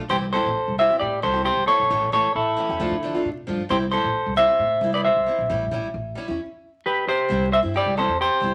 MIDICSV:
0, 0, Header, 1, 4, 480
1, 0, Start_track
1, 0, Key_signature, 0, "major"
1, 0, Tempo, 449102
1, 114, Time_signature, 4, 2, 24, 8
1, 9131, End_track
2, 0, Start_track
2, 0, Title_t, "Clean electric guitar"
2, 0, Program_c, 0, 27
2, 105, Note_on_c, 0, 72, 86
2, 113, Note_on_c, 0, 67, 66
2, 171, Note_off_c, 0, 72, 0
2, 178, Note_off_c, 0, 67, 0
2, 348, Note_on_c, 0, 72, 81
2, 359, Note_on_c, 0, 69, 70
2, 797, Note_off_c, 0, 72, 0
2, 803, Note_off_c, 0, 69, 0
2, 843, Note_on_c, 0, 76, 93
2, 850, Note_on_c, 0, 72, 70
2, 1059, Note_off_c, 0, 76, 0
2, 1063, Note_on_c, 0, 74, 90
2, 1066, Note_off_c, 0, 72, 0
2, 1075, Note_on_c, 0, 67, 69
2, 1292, Note_off_c, 0, 74, 0
2, 1298, Note_off_c, 0, 67, 0
2, 1317, Note_on_c, 0, 69, 60
2, 1318, Note_on_c, 0, 72, 78
2, 1540, Note_off_c, 0, 69, 0
2, 1540, Note_off_c, 0, 72, 0
2, 1550, Note_on_c, 0, 67, 67
2, 1555, Note_on_c, 0, 72, 84
2, 1776, Note_off_c, 0, 67, 0
2, 1787, Note_on_c, 0, 69, 69
2, 1789, Note_off_c, 0, 72, 0
2, 1794, Note_on_c, 0, 73, 90
2, 2237, Note_off_c, 0, 69, 0
2, 2263, Note_off_c, 0, 73, 0
2, 2278, Note_on_c, 0, 69, 66
2, 2278, Note_on_c, 0, 73, 83
2, 2499, Note_off_c, 0, 73, 0
2, 2500, Note_off_c, 0, 69, 0
2, 2520, Note_on_c, 0, 64, 51
2, 2520, Note_on_c, 0, 69, 63
2, 3435, Note_off_c, 0, 64, 0
2, 3435, Note_off_c, 0, 69, 0
2, 3960, Note_on_c, 0, 72, 88
2, 3965, Note_on_c, 0, 67, 65
2, 4024, Note_off_c, 0, 72, 0
2, 4029, Note_off_c, 0, 67, 0
2, 4184, Note_on_c, 0, 72, 81
2, 4200, Note_on_c, 0, 69, 67
2, 4636, Note_off_c, 0, 72, 0
2, 4644, Note_off_c, 0, 69, 0
2, 4672, Note_on_c, 0, 76, 98
2, 4677, Note_on_c, 0, 72, 75
2, 5240, Note_off_c, 0, 72, 0
2, 5277, Note_off_c, 0, 76, 0
2, 5281, Note_on_c, 0, 74, 83
2, 5292, Note_on_c, 0, 71, 64
2, 5389, Note_off_c, 0, 74, 0
2, 5393, Note_on_c, 0, 76, 79
2, 5394, Note_off_c, 0, 71, 0
2, 5399, Note_on_c, 0, 72, 64
2, 5845, Note_off_c, 0, 72, 0
2, 7273, Note_off_c, 0, 76, 0
2, 7331, Note_on_c, 0, 67, 59
2, 7337, Note_on_c, 0, 71, 80
2, 7548, Note_off_c, 0, 67, 0
2, 7569, Note_off_c, 0, 71, 0
2, 7571, Note_on_c, 0, 67, 71
2, 7573, Note_on_c, 0, 72, 96
2, 8011, Note_off_c, 0, 67, 0
2, 8028, Note_off_c, 0, 72, 0
2, 8041, Note_on_c, 0, 72, 71
2, 8051, Note_on_c, 0, 76, 87
2, 8105, Note_off_c, 0, 72, 0
2, 8114, Note_off_c, 0, 76, 0
2, 8291, Note_on_c, 0, 67, 77
2, 8304, Note_on_c, 0, 74, 94
2, 8507, Note_off_c, 0, 67, 0
2, 8514, Note_off_c, 0, 74, 0
2, 8526, Note_on_c, 0, 69, 69
2, 8534, Note_on_c, 0, 72, 83
2, 8745, Note_off_c, 0, 69, 0
2, 8747, Note_off_c, 0, 72, 0
2, 8773, Note_on_c, 0, 67, 68
2, 8781, Note_on_c, 0, 72, 90
2, 9131, Note_off_c, 0, 67, 0
2, 9131, Note_off_c, 0, 72, 0
2, 9131, End_track
3, 0, Start_track
3, 0, Title_t, "Steel-string acoustic guitar"
3, 0, Program_c, 1, 25
3, 98, Note_on_c, 1, 52, 67
3, 108, Note_on_c, 1, 60, 74
3, 111, Note_on_c, 1, 64, 75
3, 117, Note_on_c, 1, 67, 82
3, 255, Note_off_c, 1, 52, 0
3, 260, Note_off_c, 1, 60, 0
3, 261, Note_off_c, 1, 64, 0
3, 264, Note_off_c, 1, 67, 0
3, 347, Note_on_c, 1, 52, 57
3, 355, Note_on_c, 1, 60, 63
3, 371, Note_on_c, 1, 64, 67
3, 376, Note_on_c, 1, 67, 69
3, 499, Note_off_c, 1, 52, 0
3, 503, Note_off_c, 1, 60, 0
3, 511, Note_off_c, 1, 64, 0
3, 514, Note_off_c, 1, 67, 0
3, 836, Note_on_c, 1, 52, 59
3, 847, Note_on_c, 1, 60, 54
3, 855, Note_on_c, 1, 64, 55
3, 866, Note_on_c, 1, 67, 61
3, 950, Note_off_c, 1, 67, 0
3, 961, Note_off_c, 1, 52, 0
3, 962, Note_off_c, 1, 64, 0
3, 962, Note_on_c, 1, 67, 44
3, 966, Note_off_c, 1, 60, 0
3, 975, Note_on_c, 1, 64, 45
3, 985, Note_on_c, 1, 60, 42
3, 1101, Note_off_c, 1, 67, 0
3, 1107, Note_off_c, 1, 64, 0
3, 1112, Note_off_c, 1, 60, 0
3, 1307, Note_on_c, 1, 52, 55
3, 1318, Note_on_c, 1, 60, 56
3, 1324, Note_on_c, 1, 64, 62
3, 1338, Note_on_c, 1, 67, 54
3, 1412, Note_off_c, 1, 67, 0
3, 1425, Note_on_c, 1, 67, 54
3, 1427, Note_off_c, 1, 64, 0
3, 1436, Note_off_c, 1, 52, 0
3, 1440, Note_on_c, 1, 64, 45
3, 1441, Note_off_c, 1, 60, 0
3, 1456, Note_on_c, 1, 60, 39
3, 1572, Note_off_c, 1, 67, 0
3, 1580, Note_off_c, 1, 64, 0
3, 1588, Note_off_c, 1, 60, 0
3, 1792, Note_on_c, 1, 52, 52
3, 1804, Note_on_c, 1, 60, 53
3, 1812, Note_on_c, 1, 64, 58
3, 1818, Note_on_c, 1, 67, 55
3, 1941, Note_off_c, 1, 52, 0
3, 1948, Note_off_c, 1, 60, 0
3, 1951, Note_off_c, 1, 64, 0
3, 1955, Note_off_c, 1, 67, 0
3, 2034, Note_on_c, 1, 52, 74
3, 2038, Note_on_c, 1, 57, 69
3, 2045, Note_on_c, 1, 61, 74
3, 2054, Note_on_c, 1, 67, 76
3, 2183, Note_off_c, 1, 52, 0
3, 2185, Note_off_c, 1, 57, 0
3, 2188, Note_off_c, 1, 61, 0
3, 2192, Note_off_c, 1, 67, 0
3, 2266, Note_on_c, 1, 52, 59
3, 2278, Note_on_c, 1, 57, 61
3, 2288, Note_on_c, 1, 61, 69
3, 2295, Note_on_c, 1, 67, 70
3, 2419, Note_off_c, 1, 52, 0
3, 2425, Note_off_c, 1, 57, 0
3, 2429, Note_off_c, 1, 61, 0
3, 2433, Note_off_c, 1, 67, 0
3, 2741, Note_on_c, 1, 52, 57
3, 2750, Note_on_c, 1, 57, 60
3, 2760, Note_on_c, 1, 61, 56
3, 2772, Note_on_c, 1, 67, 62
3, 2868, Note_off_c, 1, 67, 0
3, 2873, Note_off_c, 1, 52, 0
3, 2878, Note_off_c, 1, 57, 0
3, 2878, Note_off_c, 1, 61, 0
3, 2881, Note_on_c, 1, 67, 48
3, 2891, Note_on_c, 1, 61, 43
3, 2904, Note_on_c, 1, 57, 40
3, 2983, Note_off_c, 1, 57, 0
3, 2988, Note_on_c, 1, 53, 74
3, 2995, Note_off_c, 1, 67, 0
3, 2996, Note_on_c, 1, 57, 73
3, 2999, Note_off_c, 1, 61, 0
3, 3003, Note_on_c, 1, 62, 71
3, 3006, Note_on_c, 1, 65, 71
3, 3140, Note_off_c, 1, 53, 0
3, 3144, Note_off_c, 1, 57, 0
3, 3147, Note_off_c, 1, 62, 0
3, 3149, Note_off_c, 1, 65, 0
3, 3235, Note_on_c, 1, 53, 64
3, 3247, Note_on_c, 1, 57, 65
3, 3253, Note_on_c, 1, 62, 63
3, 3260, Note_on_c, 1, 65, 71
3, 3349, Note_off_c, 1, 65, 0
3, 3361, Note_off_c, 1, 53, 0
3, 3362, Note_on_c, 1, 65, 56
3, 3366, Note_off_c, 1, 57, 0
3, 3369, Note_off_c, 1, 62, 0
3, 3383, Note_on_c, 1, 62, 55
3, 3387, Note_on_c, 1, 57, 43
3, 3501, Note_off_c, 1, 65, 0
3, 3512, Note_off_c, 1, 62, 0
3, 3514, Note_off_c, 1, 57, 0
3, 3708, Note_on_c, 1, 53, 62
3, 3721, Note_on_c, 1, 57, 54
3, 3728, Note_on_c, 1, 62, 66
3, 3735, Note_on_c, 1, 65, 63
3, 3860, Note_off_c, 1, 53, 0
3, 3867, Note_off_c, 1, 57, 0
3, 3870, Note_off_c, 1, 62, 0
3, 3873, Note_off_c, 1, 65, 0
3, 3945, Note_on_c, 1, 55, 68
3, 3951, Note_on_c, 1, 60, 65
3, 3960, Note_on_c, 1, 64, 84
3, 4098, Note_off_c, 1, 55, 0
3, 4102, Note_off_c, 1, 60, 0
3, 4106, Note_off_c, 1, 64, 0
3, 4185, Note_on_c, 1, 55, 64
3, 4198, Note_on_c, 1, 60, 66
3, 4211, Note_on_c, 1, 64, 74
3, 4339, Note_off_c, 1, 55, 0
3, 4345, Note_off_c, 1, 60, 0
3, 4352, Note_off_c, 1, 64, 0
3, 4661, Note_on_c, 1, 55, 54
3, 4678, Note_on_c, 1, 60, 56
3, 4685, Note_on_c, 1, 64, 60
3, 4767, Note_off_c, 1, 64, 0
3, 4780, Note_on_c, 1, 64, 48
3, 4794, Note_off_c, 1, 55, 0
3, 4800, Note_off_c, 1, 60, 0
3, 4812, Note_on_c, 1, 60, 44
3, 4931, Note_off_c, 1, 64, 0
3, 4947, Note_off_c, 1, 60, 0
3, 5141, Note_on_c, 1, 55, 57
3, 5159, Note_on_c, 1, 60, 58
3, 5170, Note_on_c, 1, 64, 68
3, 5252, Note_off_c, 1, 64, 0
3, 5264, Note_on_c, 1, 64, 47
3, 5274, Note_off_c, 1, 55, 0
3, 5280, Note_off_c, 1, 60, 0
3, 5293, Note_on_c, 1, 60, 43
3, 5413, Note_off_c, 1, 64, 0
3, 5427, Note_off_c, 1, 60, 0
3, 5627, Note_on_c, 1, 55, 52
3, 5642, Note_on_c, 1, 60, 54
3, 5654, Note_on_c, 1, 64, 61
3, 5780, Note_off_c, 1, 55, 0
3, 5787, Note_off_c, 1, 60, 0
3, 5794, Note_off_c, 1, 64, 0
3, 5874, Note_on_c, 1, 55, 71
3, 5885, Note_on_c, 1, 61, 79
3, 5893, Note_on_c, 1, 64, 72
3, 6024, Note_off_c, 1, 55, 0
3, 6029, Note_off_c, 1, 61, 0
3, 6033, Note_off_c, 1, 64, 0
3, 6106, Note_on_c, 1, 55, 73
3, 6119, Note_on_c, 1, 61, 65
3, 6129, Note_on_c, 1, 64, 76
3, 6259, Note_off_c, 1, 55, 0
3, 6266, Note_off_c, 1, 61, 0
3, 6271, Note_off_c, 1, 64, 0
3, 6576, Note_on_c, 1, 55, 55
3, 6598, Note_on_c, 1, 61, 67
3, 6607, Note_on_c, 1, 64, 70
3, 6696, Note_off_c, 1, 64, 0
3, 6709, Note_on_c, 1, 64, 54
3, 6712, Note_off_c, 1, 55, 0
3, 6723, Note_off_c, 1, 61, 0
3, 6736, Note_on_c, 1, 61, 48
3, 6830, Note_off_c, 1, 64, 0
3, 6844, Note_off_c, 1, 61, 0
3, 7786, Note_on_c, 1, 55, 75
3, 7801, Note_on_c, 1, 60, 82
3, 7811, Note_on_c, 1, 64, 76
3, 7940, Note_off_c, 1, 55, 0
3, 7947, Note_off_c, 1, 60, 0
3, 7952, Note_off_c, 1, 64, 0
3, 8151, Note_on_c, 1, 64, 54
3, 8170, Note_on_c, 1, 60, 42
3, 8271, Note_off_c, 1, 64, 0
3, 8273, Note_on_c, 1, 55, 52
3, 8277, Note_off_c, 1, 60, 0
3, 8290, Note_on_c, 1, 60, 62
3, 8304, Note_on_c, 1, 64, 64
3, 8423, Note_off_c, 1, 55, 0
3, 8431, Note_off_c, 1, 60, 0
3, 8438, Note_off_c, 1, 64, 0
3, 8518, Note_on_c, 1, 55, 63
3, 8530, Note_on_c, 1, 60, 64
3, 8543, Note_on_c, 1, 64, 60
3, 8665, Note_off_c, 1, 55, 0
3, 8671, Note_off_c, 1, 60, 0
3, 8677, Note_off_c, 1, 64, 0
3, 8980, Note_on_c, 1, 55, 59
3, 9001, Note_on_c, 1, 60, 62
3, 9013, Note_on_c, 1, 64, 71
3, 9108, Note_off_c, 1, 64, 0
3, 9112, Note_off_c, 1, 55, 0
3, 9123, Note_off_c, 1, 60, 0
3, 9131, End_track
4, 0, Start_track
4, 0, Title_t, "Upright bass"
4, 0, Program_c, 2, 32
4, 112, Note_on_c, 2, 36, 88
4, 419, Note_off_c, 2, 36, 0
4, 480, Note_on_c, 2, 33, 88
4, 576, Note_off_c, 2, 33, 0
4, 724, Note_on_c, 2, 36, 81
4, 923, Note_off_c, 2, 36, 0
4, 1080, Note_on_c, 2, 45, 82
4, 1279, Note_off_c, 2, 45, 0
4, 1320, Note_on_c, 2, 36, 82
4, 1624, Note_off_c, 2, 36, 0
4, 1678, Note_on_c, 2, 36, 80
4, 1775, Note_off_c, 2, 36, 0
4, 1918, Note_on_c, 2, 35, 71
4, 2015, Note_off_c, 2, 35, 0
4, 2034, Note_on_c, 2, 33, 96
4, 2235, Note_off_c, 2, 33, 0
4, 2272, Note_on_c, 2, 33, 76
4, 2378, Note_off_c, 2, 33, 0
4, 2512, Note_on_c, 2, 33, 82
4, 2714, Note_off_c, 2, 33, 0
4, 2876, Note_on_c, 2, 40, 69
4, 2974, Note_off_c, 2, 40, 0
4, 2989, Note_on_c, 2, 38, 91
4, 3097, Note_off_c, 2, 38, 0
4, 3111, Note_on_c, 2, 50, 76
4, 3316, Note_off_c, 2, 50, 0
4, 3476, Note_on_c, 2, 48, 77
4, 3677, Note_off_c, 2, 48, 0
4, 3716, Note_on_c, 2, 43, 84
4, 3821, Note_off_c, 2, 43, 0
4, 3955, Note_on_c, 2, 36, 92
4, 4261, Note_off_c, 2, 36, 0
4, 4318, Note_on_c, 2, 33, 87
4, 4415, Note_off_c, 2, 33, 0
4, 4556, Note_on_c, 2, 36, 81
4, 4759, Note_off_c, 2, 36, 0
4, 4905, Note_on_c, 2, 45, 83
4, 5111, Note_off_c, 2, 45, 0
4, 5144, Note_on_c, 2, 36, 87
4, 5455, Note_off_c, 2, 36, 0
4, 5519, Note_on_c, 2, 36, 78
4, 5616, Note_off_c, 2, 36, 0
4, 5756, Note_on_c, 2, 34, 78
4, 5854, Note_off_c, 2, 34, 0
4, 5877, Note_on_c, 2, 33, 102
4, 6078, Note_off_c, 2, 33, 0
4, 6109, Note_on_c, 2, 33, 78
4, 6217, Note_off_c, 2, 33, 0
4, 6348, Note_on_c, 2, 33, 81
4, 6553, Note_off_c, 2, 33, 0
4, 6720, Note_on_c, 2, 40, 76
4, 6817, Note_off_c, 2, 40, 0
4, 7796, Note_on_c, 2, 36, 91
4, 8102, Note_off_c, 2, 36, 0
4, 8160, Note_on_c, 2, 43, 77
4, 8361, Note_off_c, 2, 43, 0
4, 8401, Note_on_c, 2, 36, 84
4, 8601, Note_off_c, 2, 36, 0
4, 8639, Note_on_c, 2, 40, 72
4, 8840, Note_off_c, 2, 40, 0
4, 8992, Note_on_c, 2, 36, 83
4, 9098, Note_off_c, 2, 36, 0
4, 9131, End_track
0, 0, End_of_file